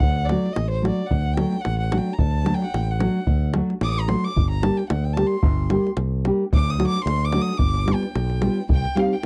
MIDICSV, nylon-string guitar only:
0, 0, Header, 1, 2, 480
1, 0, Start_track
1, 0, Tempo, 541516
1, 25, Time_signature, 2, 2, 24, 8
1, 8206, End_track
2, 0, Start_track
2, 0, Title_t, "Nylon-string guitar"
2, 0, Program_c, 0, 24
2, 264, Note_on_c, 0, 54, 66
2, 268, Note_on_c, 0, 57, 59
2, 277, Note_on_c, 0, 62, 54
2, 283, Note_on_c, 0, 66, 74
2, 418, Note_off_c, 0, 54, 0
2, 420, Note_off_c, 0, 57, 0
2, 426, Note_off_c, 0, 62, 0
2, 427, Note_off_c, 0, 66, 0
2, 725, Note_on_c, 0, 54, 56
2, 731, Note_on_c, 0, 57, 49
2, 743, Note_on_c, 0, 62, 53
2, 747, Note_on_c, 0, 66, 68
2, 890, Note_off_c, 0, 54, 0
2, 892, Note_off_c, 0, 57, 0
2, 899, Note_off_c, 0, 62, 0
2, 901, Note_off_c, 0, 66, 0
2, 1213, Note_on_c, 0, 54, 67
2, 1218, Note_on_c, 0, 57, 63
2, 1220, Note_on_c, 0, 62, 60
2, 1227, Note_on_c, 0, 66, 68
2, 1374, Note_off_c, 0, 54, 0
2, 1377, Note_off_c, 0, 57, 0
2, 1378, Note_off_c, 0, 62, 0
2, 1381, Note_off_c, 0, 66, 0
2, 1698, Note_on_c, 0, 54, 58
2, 1702, Note_on_c, 0, 57, 53
2, 1706, Note_on_c, 0, 62, 58
2, 1711, Note_on_c, 0, 66, 71
2, 1858, Note_off_c, 0, 54, 0
2, 1859, Note_off_c, 0, 57, 0
2, 1862, Note_off_c, 0, 62, 0
2, 1864, Note_off_c, 0, 66, 0
2, 2167, Note_on_c, 0, 54, 71
2, 2173, Note_on_c, 0, 57, 67
2, 2177, Note_on_c, 0, 62, 59
2, 2182, Note_on_c, 0, 66, 76
2, 2332, Note_off_c, 0, 54, 0
2, 2335, Note_off_c, 0, 57, 0
2, 2337, Note_off_c, 0, 62, 0
2, 2339, Note_off_c, 0, 66, 0
2, 2652, Note_on_c, 0, 54, 67
2, 2656, Note_on_c, 0, 57, 58
2, 2660, Note_on_c, 0, 62, 52
2, 2667, Note_on_c, 0, 66, 62
2, 2814, Note_off_c, 0, 54, 0
2, 2816, Note_off_c, 0, 57, 0
2, 2819, Note_off_c, 0, 62, 0
2, 2820, Note_off_c, 0, 66, 0
2, 3145, Note_on_c, 0, 54, 64
2, 3147, Note_on_c, 0, 62, 61
2, 3151, Note_on_c, 0, 57, 60
2, 3156, Note_on_c, 0, 66, 76
2, 3301, Note_off_c, 0, 54, 0
2, 3301, Note_off_c, 0, 62, 0
2, 3303, Note_off_c, 0, 57, 0
2, 3306, Note_off_c, 0, 66, 0
2, 3611, Note_on_c, 0, 54, 56
2, 3616, Note_on_c, 0, 57, 53
2, 3616, Note_on_c, 0, 62, 56
2, 3629, Note_on_c, 0, 66, 63
2, 3773, Note_off_c, 0, 54, 0
2, 3774, Note_off_c, 0, 57, 0
2, 3775, Note_off_c, 0, 62, 0
2, 3782, Note_off_c, 0, 66, 0
2, 4100, Note_on_c, 0, 55, 61
2, 4105, Note_on_c, 0, 58, 60
2, 4113, Note_on_c, 0, 62, 60
2, 4117, Note_on_c, 0, 67, 66
2, 4257, Note_off_c, 0, 55, 0
2, 4259, Note_off_c, 0, 58, 0
2, 4263, Note_off_c, 0, 62, 0
2, 4265, Note_off_c, 0, 67, 0
2, 4575, Note_on_c, 0, 55, 56
2, 4580, Note_on_c, 0, 58, 61
2, 4586, Note_on_c, 0, 62, 61
2, 4592, Note_on_c, 0, 67, 74
2, 4733, Note_off_c, 0, 55, 0
2, 4736, Note_off_c, 0, 58, 0
2, 4739, Note_off_c, 0, 62, 0
2, 4741, Note_off_c, 0, 67, 0
2, 5059, Note_on_c, 0, 55, 63
2, 5063, Note_on_c, 0, 58, 61
2, 5065, Note_on_c, 0, 62, 65
2, 5075, Note_on_c, 0, 67, 72
2, 5214, Note_off_c, 0, 55, 0
2, 5217, Note_off_c, 0, 58, 0
2, 5217, Note_off_c, 0, 62, 0
2, 5222, Note_off_c, 0, 67, 0
2, 5543, Note_on_c, 0, 55, 71
2, 5555, Note_on_c, 0, 58, 66
2, 5557, Note_on_c, 0, 62, 64
2, 5560, Note_on_c, 0, 67, 79
2, 5695, Note_off_c, 0, 55, 0
2, 5702, Note_off_c, 0, 58, 0
2, 5702, Note_off_c, 0, 62, 0
2, 5703, Note_off_c, 0, 67, 0
2, 6014, Note_on_c, 0, 54, 69
2, 6018, Note_on_c, 0, 57, 63
2, 6026, Note_on_c, 0, 62, 65
2, 6028, Note_on_c, 0, 66, 82
2, 6171, Note_off_c, 0, 54, 0
2, 6172, Note_off_c, 0, 57, 0
2, 6177, Note_off_c, 0, 62, 0
2, 6177, Note_off_c, 0, 66, 0
2, 6499, Note_on_c, 0, 54, 58
2, 6504, Note_on_c, 0, 57, 57
2, 6505, Note_on_c, 0, 62, 50
2, 6512, Note_on_c, 0, 66, 75
2, 6653, Note_off_c, 0, 54, 0
2, 6654, Note_off_c, 0, 57, 0
2, 6657, Note_off_c, 0, 62, 0
2, 6658, Note_off_c, 0, 66, 0
2, 6966, Note_on_c, 0, 55, 69
2, 6978, Note_on_c, 0, 59, 61
2, 6987, Note_on_c, 0, 62, 68
2, 6988, Note_on_c, 0, 65, 71
2, 7126, Note_off_c, 0, 55, 0
2, 7132, Note_off_c, 0, 59, 0
2, 7136, Note_off_c, 0, 65, 0
2, 7137, Note_off_c, 0, 62, 0
2, 7458, Note_on_c, 0, 55, 68
2, 7458, Note_on_c, 0, 59, 59
2, 7465, Note_on_c, 0, 62, 53
2, 7470, Note_on_c, 0, 65, 65
2, 7611, Note_off_c, 0, 59, 0
2, 7612, Note_off_c, 0, 55, 0
2, 7616, Note_off_c, 0, 62, 0
2, 7617, Note_off_c, 0, 65, 0
2, 7935, Note_on_c, 0, 55, 68
2, 7944, Note_on_c, 0, 60, 65
2, 7953, Note_on_c, 0, 63, 60
2, 7959, Note_on_c, 0, 67, 71
2, 8092, Note_off_c, 0, 55, 0
2, 8097, Note_off_c, 0, 60, 0
2, 8098, Note_off_c, 0, 63, 0
2, 8103, Note_off_c, 0, 67, 0
2, 8206, End_track
0, 0, End_of_file